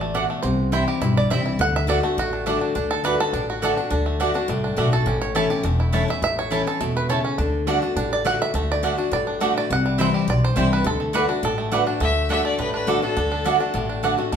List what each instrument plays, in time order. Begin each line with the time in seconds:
Already playing: upright bass A1, steel-string acoustic guitar E3, five-string banjo D5
0.01 five-string banjo A3
0.14 steel-string acoustic guitar B2, mandolin A3 F#4 D5 F#5, five-string banjo D4
0.30 five-string banjo A3
0.43 upright bass C2, steel-string acoustic guitar C3, five-string banjo C5
0.72 steel-string acoustic guitar E3 G3 C4 E4, mandolin C4 E4 C5 G5, five-string banjo E4
0.88 five-string banjo G4
1.01 upright bass B1, steel-string acoustic guitar G2, five-string banjo E4
1.17 five-string banjo D5
1.30 upright bass C2, steel-string acoustic guitar E3 G3 C4 E4, mandolin C4 E4 C5 G5, five-string banjo E5
1.46 five-string banjo E4
1.59 upright bass D2, steel-string acoustic guitar D3, five-string banjo F#5
1.76 five-string banjo E5
1.87 steel-string acoustic guitar D3 A3 D4 F#4, mandolin A3 F#4 D5 F#5, five-string banjo D5
2.03 five-string banjo A3, steel-string acoustic guitar D4 F#4
2.17 upright bass A1, steel-string acoustic guitar A2, five-string banjo F#4
2.33 five-string banjo D4
2.46 steel-string acoustic guitar D3 A3 D4 F#4, mandolin A3 F#4 D5 F#5, five-string banjo D4
2.61 five-string banjo D4
2.75 upright bass D2, steel-string acoustic guitar D3, five-string banjo D4
2.91 five-string banjo A4
3.04 steel-string acoustic guitar D3 A3 D4 F#4, mandolin A3 F#4 D5 F#5, five-string banjo B4
3.20 five-string banjo A4
3.33 upright bass A1, steel-string acoustic guitar A2, five-string banjo D4
3.50 five-string banjo F#4
3.62 steel-string acoustic guitar D3 A3 D4 F#4, mandolin A3 F#4 D5 F#5, five-string banjo A4
3.77 five-string banjo D4, steel-string acoustic guitar D4 F#4
3.90 upright bass D2, steel-string acoustic guitar D3, five-string banjo D4
4.06 five-string banjo A3
4.20 steel-string acoustic guitar D3 A3 D4 F#4, mandolin A3 F#4 D5 F#5, five-string banjo D4
4.34 five-string banjo D4, steel-string acoustic guitar D4 F#4
4.48 upright bass C2, steel-string acoustic guitar A2, five-string banjo A3
4.64 five-string banjo D4
4.76 upright bass B1, steel-string acoustic guitar D3 A3 D4 F#4, mandolin A3 F#4 D5 F#5, five-string banjo A3
4.92 steel-string acoustic guitar D4 F#4, five-string banjo A4
5.06 upright bass A1, steel-string acoustic guitar A2, five-string banjo C#4
5.21 five-string banjo C#5
5.35 steel-string acoustic guitar E3 A3 C#4 E4, mandolin A3 E4 C#5 A5, five-string banjo A4
5.50 steel-string acoustic guitar C#4 E4, five-string banjo G4
5.63 upright bass E1, steel-string acoustic guitar E2, five-string banjo A3
5.80 five-string banjo E4
5.92 steel-string acoustic guitar E3 A3 C#4 E4, mandolin A3 E4 C#5 A5, five-string banjo A3
6.08 steel-string acoustic guitar C#4 E4, five-string banjo E5
6.22 upright bass A1, steel-string acoustic guitar A2, five-string banjo E5
6.39 five-string banjo C#5
6.51 steel-string acoustic guitar E3 A3 C#4 E4, mandolin A3 E4 C#5 A5, five-string banjo E4
6.67 steel-string acoustic guitar C#4 E4, five-string banjo A4
6.80 upright bass E1, steel-string acoustic guitar B2, five-string banjo A3
6.97 five-string banjo B4
7.09 steel-string acoustic guitar C#3, mandolin A3 E4 C#5 A5, five-string banjo C#5
7.24 five-string banjo C#4
7.38 upright bass D2, steel-string acoustic guitar D3, five-string banjo D4
7.67 steel-string acoustic guitar D3 A3 D4 F#4, mandolin A3 F#4 D5 F#5, five-string banjo D4
7.82 five-string banjo D4, steel-string acoustic guitar D4 F#4
7.96 upright bass A1, steel-string acoustic guitar A2, five-string banjo D4
8.13 five-string banjo D5
8.25 steel-string acoustic guitar D3 A3 D4 F#4, mandolin A3 F#4 D5 F#5, five-string banjo F#5
8.42 five-string banjo E5
8.54 upright bass D2, steel-string acoustic guitar D3, five-string banjo A3
8.72 five-string banjo D5
8.83 steel-string acoustic guitar D3 A3 D4 F#4, mandolin A3 F#4 D5 F#5, five-string banjo D4
8.98 five-string banjo D4, steel-string acoustic guitar D4 F#4
9.11 upright bass A1, steel-string acoustic guitar A2, five-string banjo D5
9.27 five-string banjo D4
9.40 steel-string acoustic guitar D3 A3 D4 F#4, mandolin A3 F#4 D5 F#5, five-string banjo A3
9.58 five-string banjo D5
9.70 upright bass C2, steel-string acoustic guitar C3, five-string banjo F#5
9.86 five-string banjo G3
9.98 steel-string acoustic guitar E3 G3 C4 E4, mandolin C4 E4 C5 G5, five-string banjo E5
10.14 five-string banjo G4
10.27 upright bass B1, steel-string acoustic guitar G2, five-string banjo D5
10.45 five-string banjo C5
10.56 upright bass C2, steel-string acoustic guitar E3 G3 C4 E4, five-string banjo G3, mandolin C4 E4 C5 G5
10.73 five-string banjo B4
10.84 upright bass D2, steel-string acoustic guitar D3, five-string banjo A4
11.00 five-string banjo A3
11.13 steel-string acoustic guitar D3 A3 D4 F#4, mandolin A3 F#4 D5 F#5, five-string banjo B4
11.28 five-string banjo D4, steel-string acoustic guitar D4 F#4
11.43 upright bass A1, steel-string acoustic guitar A2, five-string banjo A4
11.58 five-string banjo A3
11.71 steel-string acoustic guitar D3 A3 D4 F#4, mandolin A3 F#4 D5 F#5, five-string banjo B4
11.86 five-string banjo D4, steel-string acoustic guitar D4 F#4
12.00 upright bass D2, steel-string acoustic guitar D3, five-string banjo A3, fiddle E5
12.29 steel-string acoustic guitar D3 A3 D4 F#4, mandolin A3 F#4 D5 F#5, five-string banjo D4, fiddle E5
12.45 five-string banjo A3, fiddle D5
12.59 upright bass A1, steel-string acoustic guitar A2, five-string banjo D4, fiddle B4
12.74 five-string banjo D4, fiddle B4
12.87 steel-string acoustic guitar D3 A3 D4 F#4, mandolin A3 F#4 D5 F#5, five-string banjo D4, fiddle A4
13.02 five-string banjo D4, steel-string acoustic guitar D4 F#4, fiddle A4
13.17 upright bass D2, steel-string acoustic guitar D3, five-string banjo D4
13.32 five-string banjo D4
13.44 steel-string acoustic guitar D3 A3 D4 F#4, mandolin A3 F#4 D5 F#5, five-string banjo D4
13.60 five-string banjo D4, steel-string acoustic guitar D4 F#4
13.74 upright bass A1, steel-string acoustic guitar A2, five-string banjo A3
13.89 five-string banjo D4
14.03 steel-string acoustic guitar D3 A3 D4 F#4, mandolin A3 F#4 D5 F#5, five-string banjo D4
14.18 five-string banjo A3, steel-string acoustic guitar D4 F#4
14.32 upright bass A1, steel-string acoustic guitar A2, five-string banjo A3